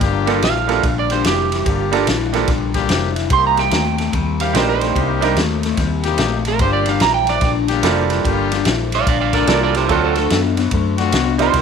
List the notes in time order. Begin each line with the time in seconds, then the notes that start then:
0.01 G1 G2 D3 A#3 D4 F4 G4, kick, snare, ride
0.26 G2 D3 G3 A#3 D4 F4 A4, snare, ride
0.42 A#1 G2 E3 F5, snare, ride
0.67 G2 E3 G3 A#3 D4 F4 A4, snare, ride
0.83 A#1 G2 D3, kick, ride
0.99 D5
1.10 G2 D3 A#3 D4 F4 G4 C5, snare, ride
1.24 F1 G2 E3 G4, snare, ride
1.52 G2 E3, snare, ride
1.65 G1 G2 D3 A#3 D4 F4 G4, kick, ride
1.91 G2 D3 G3 A#3 D4 F4 A4, snare, ride
2.07 A#1 G2 E3, snare, ride
2.33 G2 E3 G3 A#3 D4 F4 A4, snare, ride
2.48 A#1 G2 D3, kick, snare, ride
2.74 G2 D3 A#3 D4 F4 G4, kick, snare, ride
2.89 F1 G2 E3, snare, ride
3.16 G2 E3, snare, ride
3.30 C2 C3 G3 A#3 C4 D#4 G4 C6, kick, ride
3.47 A#5
3.57 C3 G3 G5, snare, ride
3.71 D#2 C3 A3, snare, ride
3.98 C3 A3, snare, ride
4.13 D#2 C3 G3, kick, ride
4.39 C3 G3 A#3 C4 G4 F5, snare, ride
4.53 A#1 C3 G3 A3 C4 D4 D#4 A#4 C5, snare, ride
4.69 C5
4.81 C3 A3, snare, ride
4.95 C2 C3 G3 A#3 C4 D#4 G4, kick, ride
5.21 C3 G3 C4 D4 D#4 A#4, snare, ride
5.25 G3
5.35 D#2 C3 A3, snare, ride
5.63 C3 A3, snare, ride
5.77 D#2 C3 G3, kick, snare, ride
6.03 C3 G3 A#3 C4 D#4 G4, snare, ride
6.18 A#1 C3 A3, snare, ride
6.45 C3 A3 A#4, snare, ride
6.59 G1 G2 D3 A#3 D4 F4 G4 C5, kick, ride
6.73 D5
6.86 G2 D3 F5, snare, ride
7.00 A#1 G2 E3 A#5, snare, ride
7.14 G5
7.27 G2 E3 D5, snare, ride
7.41 A#1 G2 D3, kick, snare, ride
7.68 G2 D3 A#3 D4 F4 G4, snare, ride
7.83 F1 G2 E3 G3 A#3 D4 F4 A4, snare, ride
8.10 G2 E3, snare, ride
8.24 G1 G2 D3 A#3 D4 F4 G4, kick, ride
8.52 G2 D3, snare, ride
8.65 A#1 G2 E3, snare, ride
8.92 G2 E3 D5 F5, snare, ride
9.07 A#1 G2 D3 D5 F5, kick, ride
9.21 D5 F5
9.33 G2 D3 A#3 D4 F4 A4 A#4 D5, kick, snare, ride
9.47 C2 G2 E3 G3 A#3 D4 F4 A4 A#4 D5, snare, ride
9.63 A#4 D5
9.74 G2 E3 G4 C5, snare, ride
9.88 D2 D3 F#3 A3 C4 D4 F4 F#4 A4 C5, kick, ride
10.04 A4 C5
10.15 D3 A3 A4, snare, ride
10.30 F#2 D3 B3, snare, ride
10.57 D3 B3, snare, ride
10.71 F#2 D3 A3, kick, ride
10.97 D3 A3 C4 D4 F4 F#4, snare, ride
11.12 C2 D3 B3, snare, ride
11.38 D3 G3 B3 C4 D4 D#4 F4 C5, snare, ride
11.53 C2 C3 G3 C4 D#4 G4 A#4, kick, snare, ride